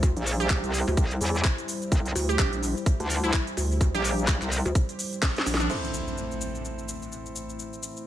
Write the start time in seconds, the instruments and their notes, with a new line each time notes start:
Already playing: wobble bass D2, analog synth pad G3 E4 C5
0.03 kick, closed hi-hat, cabasa
0.17 wobble bass A#1, closed hi-hat, cabasa
0.26 open hi-hat, cabasa
0.40 synth pluck G4, closed hi-hat, cabasa
0.50 kick, clap, closed hi-hat, cabasa
0.64 wobble bass C2, closed hi-hat, cabasa
0.74 open hi-hat, cabasa
0.87 wobble bass D2, cabasa
0.97 wobble bass C2, kick, closed hi-hat, cabasa
1.11 closed hi-hat, cabasa
1.21 wobble bass E2, open hi-hat, cabasa
1.35 closed hi-hat, cabasa
1.45 kick, clap, closed hi-hat, cabasa
1.58 closed hi-hat, cabasa
1.68 open hi-hat, cabasa
1.82 closed hi-hat, cabasa
1.92 wobble bass C2, kick, closed hi-hat, cabasa
2.06 closed hi-hat, cabasa
2.15 wobble bass D2, open hi-hat, cabasa
2.29 synth pluck G4, closed hi-hat, cabasa
2.39 wobble bass A#1, synth pluck G4, kick, clap, closed hi-hat, cabasa
2.53 closed hi-hat, cabasa
2.63 open hi-hat, cabasa
2.77 cabasa
2.86 kick, closed hi-hat, cabasa
3.00 wobble bass D2, closed hi-hat, cabasa
3.10 open hi-hat, cabasa
3.24 synth pluck E4, closed hi-hat, cabasa
3.33 kick, clap, closed hi-hat, cabasa
3.47 closed hi-hat, cabasa
3.57 wobble bass D2, open hi-hat, cabasa
3.72 cabasa
3.81 kick, closed hi-hat, cabasa
3.95 wobble bass A#1, synth pluck G4, closed hi-hat, cabasa
4.04 open hi-hat, cabasa
4.18 closed hi-hat, cabasa
4.28 kick, clap, closed hi-hat, cabasa
4.42 wobble bass C2, clap, closed hi-hat, cabasa
4.52 open hi-hat, cabasa
4.65 wobble bass D2, closed hi-hat, cabasa
4.75 kick, closed hi-hat, cabasa
4.89 closed hi-hat, cabasa
4.99 open hi-hat, cabasa
5.13 closed hi-hat, cabasa
5.22 kick, snare, clap, closed hi-hat, cabasa
5.36 snare, closed hi-hat, cabasa
5.46 wobble bass A#1, open hi-hat, cabasa
5.54 snare
5.60 synth pluck D4, closed hi-hat, cabasa
5.70 analog synth pad A3 E4 C5, grand piano C4 E4 A4 C5, crash, impact, cabasa
5.84 cabasa
5.94 cabasa
6.08 cabasa
6.18 cabasa
6.31 cabasa
6.41 cabasa
6.55 cabasa
6.65 cabasa
6.79 cabasa
6.88 cabasa
7.02 cabasa
7.12 cabasa
7.26 cabasa
7.36 cabasa
7.49 cabasa
7.59 cabasa
7.73 cabasa
7.83 cabasa
7.97 cabasa